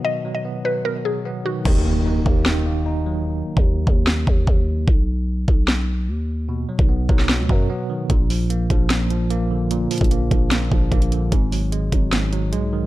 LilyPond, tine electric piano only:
\new Staff \with { instrumentName = "Tine electric piano" } { \clef bass \time 4/4 \key ees \minor \tempo 4 = 149 <b, dis fis b>8 fis8 b8 fis8 b,8 fis8 b8 dis8 | ees8 bes8 ees'8 bes8 ees8 bes8 ees'8 ges8 | r1 | r1 |
b,8 fis8 b8 fis8 b,8 fis8 b8 dis8 | bes,8 f8 bes8 f8 bes,8 f8 bes8 d8 | bes,8 f8 bes8 f8 bes,8 f8 bes8 d8 | aes,8 ges8 aes8 ges8 aes,8 ges8 aes8 ees8 | }